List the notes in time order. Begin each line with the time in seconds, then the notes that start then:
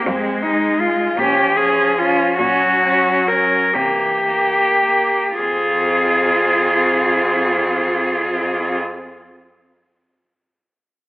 0.05 F2 G#3 C4
0.42 G#3 D#4
0.81 G#3 F4
1.17 A#2 F3 C#4 G4
1.57 C#4 G#4
1.98 C#4 F4
2.38 A#2 F#3 C#4 F#4
2.85 C#4
3.28 C#4 A#4
3.74 C3 E3 A#3 G4
4.26 A#3
4.85 A#3
5.40 F2 C4 F4 G#4